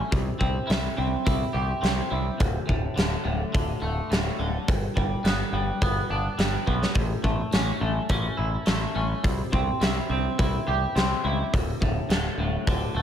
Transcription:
0.00 0.11 A3 medium
0.00 0.11 C#4 medium
0.00 0.67 E4 medium
0.11 0.29 C2 medium
0.11 1.54 C3 medium
0.11 kick loud
0.11 open hi-hat soft
0.39 0.58 C2 medium
0.39 0.96 C4 medium
0.39 kick medium
0.67 0.87 C2 medium
0.67 1.24 E4 medium
0.67 snare loud
0.67 open hi-hat soft
0.97 1.15 C2 medium
0.97 1.80 C4 medium
1.26 1.44 C2 medium
1.26 2.10 E4 medium
1.26 kick medium
1.26 open hi-hat soft
1.53 1.71 C2 medium
1.53 2.39 G4 medium
1.81 2.00 C2 medium
1.81 2.39 C4 medium
1.81 snare medium
1.81 open hi-hat soft
2.11 2.29 C2 medium
2.11 2.39 E4 medium
2.38 2.57 D1 medium
2.38 3.82 D2 medium
2.38 kick loud
2.38 open hi-hat soft
2.67 2.86 D1 medium
2.67 3.23 A2 medium
2.67 kick medium
2.96 3.14 D1 medium
2.96 3.52 D3 medium
2.96 snare medium
2.96 open hi-hat soft
3.24 3.42 D1 medium
3.24 4.09 A2 medium
3.53 3.71 D1 medium
3.53 4.38 D3 medium
3.53 kick medium
3.53 open hi-hat soft
3.82 3.99 D1 medium
3.82 4.67 A3 medium
4.10 4.28 D1 medium
4.10 4.67 A2 medium
4.10 snare medium
4.10 open hi-hat soft
4.39 4.56 D1 medium
4.39 4.68 D3 medium
4.68 4.86 G1 medium
4.68 6.10 G2 medium
4.68 kick loud
4.68 open hi-hat soft
4.95 5.14 G1 medium
4.95 5.53 G3 medium
4.95 kick medium
5.24 5.42 G1 medium
5.24 5.81 B3 medium
5.24 snare medium
5.24 open hi-hat soft
5.53 5.70 G1 medium
5.53 6.37 G3 medium
5.82 5.99 G1 medium
5.82 6.65 B3 medium
5.82 kick medium
5.82 open hi-hat soft
6.10 6.27 G1 medium
6.10 6.96 D4 medium
6.38 6.56 G1 medium
6.38 6.95 G3 medium
6.38 snare medium
6.38 open hi-hat soft
6.67 6.84 B1 medium
6.67 6.95 B3 soft
6.67 kick soft
6.83 snare medium
6.94 7.12 A1 medium
6.94 8.37 A2 medium
6.94 kick loud
6.94 open hi-hat soft
7.24 7.41 A1 medium
7.24 7.80 A3 medium
7.24 kick medium
7.52 7.70 A1 medium
7.52 8.09 C#4 medium
7.52 snare medium
7.52 open hi-hat soft
7.81 7.98 A1 medium
7.81 8.65 A3 medium
8.09 8.27 A1 medium
8.09 8.94 C#4 medium
8.09 kick medium
8.09 open hi-hat soft
8.37 8.56 A1 medium
8.37 9.81 E4 medium
8.66 8.84 A1 medium
8.66 9.24 A3 medium
8.66 snare medium
8.66 open hi-hat soft
8.95 9.13 A1 medium
8.95 9.24 C#4 medium
9.24 9.41 C2 medium
9.24 10.67 C3 medium
9.24 kick loud
9.24 open hi-hat soft
9.52 9.70 C2 medium
9.52 10.09 C4 medium
9.52 kick medium
9.81 9.98 C2 medium
9.81 10.38 E4 medium
9.81 snare medium
9.81 open hi-hat soft
10.10 10.27 C2 medium
10.10 10.95 C4 medium
10.39 10.56 C2 medium
10.39 11.23 E4 medium
10.39 kick loud
10.39 open hi-hat soft
10.67 10.85 C2 medium
10.67 11.53 G4 medium
10.96 11.13 C2 medium
10.96 11.53 C4 medium
10.96 snare medium
10.96 open hi-hat soft
11.24 11.42 C#2 medium
11.24 11.53 E4 medium
11.53 11.70 D1 medium
11.53 12.96 D2 medium
11.53 kick medium
11.53 open hi-hat soft
11.81 11.99 D1 medium
11.81 12.38 A2 medium
11.81 kick medium
12.09 12.27 D1 medium
12.09 12.67 D3 medium
12.09 snare medium
12.09 open hi-hat soft
12.38 12.55 D1 medium
12.38 13.02 A2 medium
12.67 12.84 D1 medium
12.67 13.02 D3 medium
12.67 kick medium
12.67 open hi-hat soft
12.95 13.02 D1 medium
12.95 13.02 A3 medium

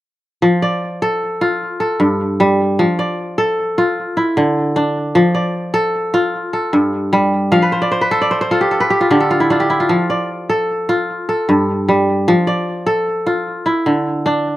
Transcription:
0.42 1.65 F3 medium
0.62 1.73 D5 medium
1.02 1.80 A4 medium
1.41 2.93 F4 medium
1.80 3.12 A4 medium
2.00 2.83 G2 medium
2.40 2.83 G3 medium
2.79 4.02 F3 medium
2.99 4.10 D5 medium
3.38 4.70 A4 medium
3.78 4.23 F4 medium
4.17 5.21 E4 medium
4.37 5.20 D3 medium
4.76 6.44 D4 medium
5.15 6.38 F3 medium
5.35 6.45 D5 medium
5.74 6.53 A4 medium
6.14 7.65 F4 medium
6.53 7.85 A4 medium
6.73 7.57 G2 medium
7.13 7.57 G3 medium
7.52 8.76 F3 medium
7.52 8.52 F5 medium
7.62 7.98 B4 medium
7.72 7.91 C5 medium
7.82 8.21 D5 medium
7.92 8.11 C5 medium
8.01 8.37 B4 medium
8.11 8.51 A4 medium
8.11 8.30 C5 medium
8.22 9.32 D5 medium
8.31 8.41 C5 medium
8.41 8.86 C5 medium
8.51 9.00 F4 medium
8.51 8.71 A4 medium
8.61 8.90 G4 medium
8.71 9.20 A4 medium
8.80 10.03 B4 medium
8.90 9.10 G4 medium
9.01 9.30 F4 medium
9.11 9.94 D3 medium
9.11 9.60 G4 medium
9.20 10.49 A4 medium
9.31 9.50 F4 medium
9.40 9.69 E4 medium
9.50 11.18 D4 medium
9.50 9.76 F4 medium
9.60 11.01 G4 medium
9.70 9.95 E4 medium
9.80 10.89 F4 medium
9.89 11.13 F3 medium
10.10 11.21 D5 medium
10.49 11.28 A4 medium
10.89 12.40 F4 medium
11.29 12.61 A4 medium
11.49 12.32 G2 medium
11.89 12.32 G3 medium
12.28 13.51 F3 medium
12.47 13.58 D5 medium
12.87 14.18 A4 medium
13.27 13.72 F4 medium
13.66 14.57 E4 medium
13.86 14.57 D3 medium
14.26 14.57 D4 medium

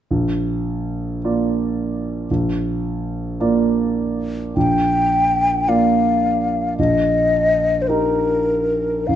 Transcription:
0.11 1.19 A#1 soft
1.24 2.26 A#3 soft
1.24 2.26 F4 soft
1.24 2.26 D5 soft
2.31 3.37 A#1 soft
3.40 4.52 A#3 soft
3.40 4.53 F4 soft
3.40 4.53 D5 soft
4.56 5.64 A#1 soft
4.56 5.70 G5 medium
5.68 6.74 A#3 soft
5.68 6.74 F4 soft
5.68 6.75 D5 soft
5.68 6.77 F5 soft
6.78 7.86 A#1 soft
6.78 7.83 D#5 medium
7.82 7.89 C5 soft
7.88 9.05 D#4 soft
7.88 9.05 G4 soft
7.88 9.09 A#4 medium
7.88 9.05 A#4 soft
9.07 9.15 A1 soft
9.07 9.15 F5 medium

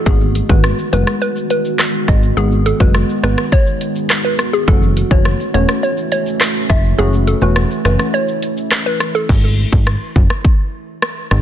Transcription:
0.00 6.94 F#4 medium
0.06 0.42 G#1 loud
0.06 0.28 D#3 loud
0.06 4.64 D#3 medium
0.06 0.28 G#3 medium
0.06 4.64 G#3 medium
0.06 4.64 B3 medium
0.06 0.28 B3 medium
0.06 0.28 F#4 loud
0.06 0.18 G#4 loud
0.06 kick loud
0.06 shaker medium
0.21 shaker soft
0.35 closed hi-hat medium
0.35 shaker medium
0.49 0.73 G#1 medium
0.49 0.71 D#3 medium
0.49 0.71 G#3 medium
0.49 0.71 B3 medium
0.49 0.71 F#4 medium
0.49 0.62 B4 medium
0.49 kick loud
0.49 shaker medium
0.64 cross-stick loud
0.64 shaker medium
0.79 shaker medium
0.93 1.05 F#1 medium
0.93 1.14 D#3 medium
0.93 1.14 G#3 medium
0.93 1.14 B3 medium
0.93 1.15 F#4 medium
0.93 1.05 B4 medium
0.93 closed hi-hat medium
0.93 shaker medium
1.07 cross-stick medium
1.07 shaker medium
1.21 1.34 B4 medium
1.21 shaker medium
1.36 shaker medium
1.50 1.63 B4 medium
1.50 closed hi-hat medium
1.50 shaker medium
1.65 shaker medium
1.79 cross-stick loud
1.79 clap loud
1.79 shaker medium
1.94 shaker medium
2.08 2.32 G#1 medium
2.08 2.20 D#5 medium
2.08 kick medium
2.08 cross-stick medium
2.08 closed hi-hat medium
2.08 shaker medium
2.23 shaker medium
2.37 2.73 G#1 loud
2.37 2.58 D#3 loud
2.37 2.59 G#3 medium
2.37 2.59 B3 medium
2.37 2.59 F#4 loud
2.37 2.49 G#4 loud
2.37 shaker medium
2.52 shaker medium
2.66 2.78 A4 medium
2.66 closed hi-hat medium
2.66 shaker medium
2.80 3.04 F#1 medium
2.80 3.02 D#3 medium
2.80 3.02 G#3 medium
2.80 3.02 B3 medium
2.80 3.02 F#4 medium
2.80 2.92 B4 medium
2.80 kick loud
2.80 shaker medium
2.94 cross-stick loud
2.94 shaker medium
3.09 shaker medium
3.23 3.35 G#1 medium
3.23 3.45 D#3 medium
3.23 3.45 G#3 medium
3.23 3.45 B3 medium
3.23 3.45 F#4 medium
3.23 3.36 B4 medium
3.23 cross-stick loud
3.23 closed hi-hat medium
3.23 shaker medium
3.38 cross-stick loud
3.38 shaker medium
3.52 3.93 C#5 loud
3.52 kick medium
3.52 shaker medium
3.67 shaker medium
3.81 closed hi-hat medium
3.81 shaker medium
3.96 shaker medium
4.10 cross-stick loud
4.10 clap loud
4.10 shaker medium
4.25 4.37 B4 medium
4.25 shaker medium
4.39 cross-stick loud
4.39 closed hi-hat medium
4.39 shaker medium
4.53 4.66 G#4 medium
4.53 shaker medium
4.67 5.04 F#1 loud
4.67 4.89 E3 loud
4.67 9.25 E3 medium
4.67 4.89 A3 medium
4.67 9.25 A3 medium
4.67 9.25 C#4 medium
4.67 4.89 C#4 medium
4.67 4.90 F#4 loud
4.67 4.80 A4 loud
4.67 kick loud
4.67 shaker medium
4.83 shaker medium
4.97 closed hi-hat medium
4.97 shaker medium
5.11 5.35 F#1 medium
5.11 5.32 E3 medium
5.11 5.33 A3 medium
5.11 5.33 C#4 medium
5.11 5.33 F#4 medium
5.11 5.23 C#5 medium
5.11 kick loud
5.11 shaker medium
5.25 cross-stick loud
5.25 shaker medium
5.40 shaker medium
5.54 5.66 E1 loud
5.54 5.76 E3 medium
5.54 5.76 A3 medium
5.54 5.76 C#4 medium
5.54 5.76 F#4 medium
5.54 5.66 C#5 medium
5.54 closed hi-hat medium
5.54 shaker medium
5.69 cross-stick loud
5.69 shaker medium
5.83 5.95 C#5 medium
5.83 shaker medium
5.97 shaker medium
6.12 6.24 C#5 medium
6.12 closed hi-hat medium
6.12 shaker medium
6.26 shaker medium
6.41 cross-stick loud
6.41 clap loud
6.41 shaker medium
6.55 shaker medium
6.70 6.94 F#1 loud
6.70 6.82 E5 medium
6.70 kick medium
6.70 cross-stick medium
6.70 closed hi-hat medium
6.70 shaker medium
6.84 shaker medium
6.98 7.34 F#1 loud
6.98 7.20 E3 medium
6.98 7.20 A3 medium
6.98 7.20 C#4 medium
6.98 9.27 E4 medium
6.98 7.20 F#4 loud
6.98 7.11 G#4 loud
6.98 shaker medium
7.13 shaker medium
7.27 7.40 A4 medium
7.27 closed hi-hat medium
7.27 shaker medium
7.41 7.66 E1 medium
7.41 7.63 E3 medium
7.41 7.63 A3 medium
7.41 7.63 C#4 medium
7.41 7.64 F#4 medium
7.41 7.54 B4 medium
7.41 shaker medium
7.56 cross-stick loud
7.56 shaker medium
7.71 shaker medium
7.85 7.97 F#1 medium
7.85 8.07 E3 medium
7.85 8.07 A3 medium
7.85 8.07 C#4 medium
7.85 8.07 F#4 medium
7.85 7.97 B4 medium
7.85 cross-stick loud
7.85 closed hi-hat medium
7.85 shaker medium
7.99 cross-stick medium
7.99 shaker medium
8.14 8.55 C#5 loud
8.14 shaker medium
8.28 shaker medium
8.43 closed hi-hat medium
8.43 shaker medium
8.57 shaker medium
8.72 cross-stick loud
8.72 clap loud
8.72 shaker medium
8.86 8.98 B4 medium
8.86 shaker medium
9.00 cross-stick loud
9.00 closed hi-hat medium
9.00 shaker medium
9.15 9.27 A4 medium
9.15 shaker medium
9.29 9.65 G#1 loud
9.29 kick loud
9.29 crash medium
9.73 9.96 G#1 medium
9.73 kick loud
9.87 cross-stick loud
10.16 10.28 F#1 medium
10.16 kick loud
10.30 cross-stick medium
10.45 kick medium
11.02 cross-stick loud
11.31 11.42 G#1 medium
11.31 cross-stick medium

